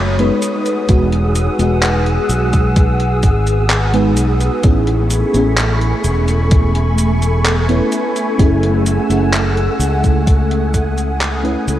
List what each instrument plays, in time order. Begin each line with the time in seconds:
Already playing: fretless electric bass F#1, fm electric piano A3 C#4 D#4 F#4, string machine A3 C#5 B5 D#6
0.19 fm electric piano G#3 B3 D#4 B4, closed hi-hat
0.42 string machine G#4 F#5 E6, closed hi-hat, cabasa
0.66 closed hi-hat, cabasa
0.88 fretless electric bass E1, fm electric piano G#3 B3 D#4 F#4, kick, closed hi-hat, cabasa
1.12 closed hi-hat
1.35 closed hi-hat, cabasa
1.58 fretless electric bass E1, fm electric piano G#3 B3 D#4 F#4, closed hi-hat, cabasa
1.83 clap, closed hi-hat, cabasa
2.06 closed hi-hat
2.29 fretless electric bass B1, closed hi-hat, cabasa
2.53 kick, closed hi-hat, cabasa
2.76 kick, closed hi-hat, cabasa
3.00 closed hi-hat
3.23 fretless electric bass G#1, kick, closed hi-hat, cabasa
3.47 closed hi-hat, cabasa
3.70 clap, closed hi-hat, cabasa
3.93 fm electric piano G#3 B3 D#4 B4, closed hi-hat
4.16 fretless electric bass B1, closed hi-hat, cabasa
4.41 closed hi-hat, cabasa
4.63 fretless electric bass A1, string machine A3 G#5 B5 C#6, fm electric piano B3 C#4 E4 G#4, kick, closed hi-hat, cabasa
4.87 closed hi-hat
5.10 closed hi-hat, cabasa
5.33 fretless electric bass A1, fm electric piano B3 C#4 E4 G#4, closed hi-hat, cabasa
5.57 clap, closed hi-hat, cabasa
5.81 closed hi-hat
6.04 fretless electric bass E1, closed hi-hat, cabasa
6.28 closed hi-hat, cabasa
6.51 kick, closed hi-hat, cabasa
6.75 closed hi-hat
6.98 closed hi-hat, cabasa
7.22 closed hi-hat, cabasa
7.45 clap, closed hi-hat, cabasa
7.68 fm electric piano B3 C#4 E4 B4, closed hi-hat
7.92 closed hi-hat, cabasa
8.16 closed hi-hat, cabasa
8.38 fretless electric bass F#1, fm electric piano A3 C#4 E4 G#4, string machine F#5 E6, kick, closed hi-hat, cabasa
8.63 closed hi-hat
8.86 closed hi-hat, cabasa
9.09 fretless electric bass F#1, fm electric piano A3 C#4 E4 G#4, closed hi-hat, cabasa
9.33 clap, closed hi-hat, cabasa
9.57 closed hi-hat
9.79 fretless electric bass C#2, closed hi-hat, cabasa
10.04 kick, closed hi-hat, cabasa
10.27 string machine D#6, kick, closed hi-hat, cabasa
10.51 closed hi-hat
10.74 kick, closed hi-hat, cabasa
10.98 closed hi-hat, cabasa
11.21 clap, closed hi-hat, cabasa
11.43 fm electric piano A3 C#4 E4 B4, closed hi-hat
11.67 fretless electric bass C#2, closed hi-hat, cabasa